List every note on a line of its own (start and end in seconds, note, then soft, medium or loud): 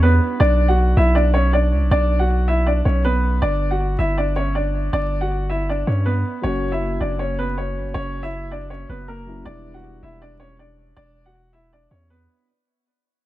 0.00 0.20 E2 loud
0.00 0.35 G3 medium
0.00 0.36 B3 medium
0.00 0.38 B3 medium
0.00 0.36 D4 medium
0.00 0.37 E4 medium
0.00 0.38 B4 medium
0.40 0.94 B1 loud
0.40 0.67 D4 medium
0.40 0.67 D5 loud
0.68 0.95 F#4 medium
0.68 0.95 F#5 medium
0.97 1.74 B1 loud
0.97 1.14 E4 medium
0.97 1.13 E5 medium
1.15 1.32 D4 medium
1.15 1.32 D5 medium
1.34 1.51 C#4 medium
1.34 1.50 C#5 medium
1.53 1.89 D4 medium
1.53 1.89 D5 medium
1.72 1.83 C#2 loud
1.82 1.91 B1 loud
1.91 2.82 B1 loud
1.91 2.18 D4 medium
1.91 2.18 D5 loud
2.19 2.46 F#4 medium
2.19 2.46 F#5 medium
2.48 2.65 E4 medium
2.48 2.64 E5 medium
2.66 2.83 D4 medium
2.66 2.83 D5 medium
2.85 3.40 B1 loud
2.85 3.02 C#4 medium
2.85 3.02 C#5 medium
3.05 3.40 B3 medium
3.05 3.40 B4 medium
3.42 3.96 G1 loud
3.42 3.69 D4 medium
3.42 3.68 D5 loud
3.71 3.97 F#4 medium
3.71 3.97 F#5 medium
3.99 4.89 G1 loud
3.99 4.15 E4 medium
3.99 4.15 E5 medium
4.18 4.34 D4 medium
4.18 4.34 D5 medium
4.36 4.53 C#4 medium
4.36 4.53 C#5 medium
4.55 4.91 D4 medium
4.55 4.91 D5 medium
4.93 5.83 G1 loud
4.93 5.20 D4 medium
4.93 5.20 D5 loud
5.21 5.48 F#4 medium
5.21 5.48 F#5 medium
5.49 5.66 E4 medium
5.49 5.66 E5 medium
5.69 5.86 D4 medium
5.69 5.85 D5 medium
5.87 6.23 G2 loud
5.87 6.04 C#4 medium
5.87 6.04 C#5 medium
6.06 6.42 B3 medium
6.06 6.41 B4 medium
6.41 6.98 F#1 loud
6.41 9.22 F#3 medium
6.41 9.22 A#3 medium
6.41 6.71 C#4 medium
6.41 9.23 C#4 medium
6.41 6.70 C#5 loud
6.46 9.24 F#4 medium
6.72 6.99 E4 medium
6.72 6.99 E5 medium
7.00 7.77 F#1 loud
7.00 7.17 D4 medium
7.00 7.17 D5 medium
7.19 7.36 C#4 medium
7.19 7.36 C#5 medium
7.39 7.55 B3 medium
7.39 7.55 B4 medium
7.58 7.93 C#4 medium
7.58 7.93 C#5 medium
7.76 7.87 G1 loud
7.85 7.94 F#1 loud
7.94 8.85 F#1 loud
7.94 8.21 C#4 medium
7.94 8.21 C#5 loud
8.23 8.50 E4 medium
8.23 8.49 E5 medium
8.51 8.68 D4 medium
8.51 8.68 D5 medium
8.70 8.87 C#4 medium
8.70 8.87 C#5 medium
8.89 9.43 F#1 loud
8.89 9.06 B3 medium
8.89 9.06 B4 medium
9.08 9.44 A#3 medium
9.08 9.44 A#4 medium
9.26 9.45 F#3 medium
9.26 9.46 A#3 medium
9.26 9.46 C#4 soft
9.26 9.46 E4 medium
9.43 10.00 E1 loud
9.43 12.42 G3 medium
9.43 12.43 B3 medium
9.43 9.73 D4 medium
9.43 12.44 D4 medium
9.43 9.72 D5 loud
9.48 12.45 E4 medium
9.74 10.01 F#4 medium
9.74 10.01 F#5 medium
10.02 10.93 E1 loud
10.02 10.19 E4 medium
10.02 10.19 E5 medium
10.22 10.38 D4 medium
10.22 10.38 D5 medium
10.40 10.57 C#4 medium
10.40 10.56 C#5 medium
10.59 10.95 D4 medium
10.59 10.95 D5 medium
10.97 11.87 E1 loud
10.97 11.24 D4 medium
10.97 11.23 D5 loud
11.26 11.52 F#4 medium
11.26 11.52 F#5 medium
11.53 11.70 E4 medium
11.53 11.69 E5 medium
11.73 11.89 D4 medium
11.73 11.89 D5 medium
11.91 12.27 E2 loud
11.91 12.08 C#4 medium
11.91 12.07 C#5 medium
12.10 12.46 B3 medium
12.10 12.45 B4 medium